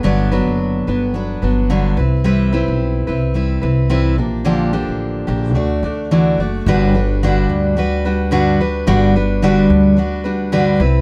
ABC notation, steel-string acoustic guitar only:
X:1
M:4/4
L:1/8
Q:"Swing 16ths" 1/4=109
K:G
V:1 name="Steel-string acoustic guitar"
[G,,D,F,B,DB] [D,F,B,DB]2 [F,B,DB] [F,B,DB] [F,B,DB] [G,,D,F,B,DB] [CEB] | [C,G,CEB] [G,CEB]2 [CEB] [G,CEB] [CEB] [C,G,CEB] [=F,_B,DG] | [_B,,D,=F,_B,DG] [D,F,B,DG]2 [F,B,DG] [A,D^Fd] [A,DFd] [D,E,A,DFd] [A,DFd] | [G,,D,G,DFB] [G,DFB] [G,,D,G,DFB]2 [G,DFB] [G,DFB] [G,,D,G,DFB] [G,DFB] |
[G,,D,G,DFB] [G,DFB] [G,,D,G,DFB]2 [G,DFB] [G,DFB] [G,,D,G,DFB] [CEB] |]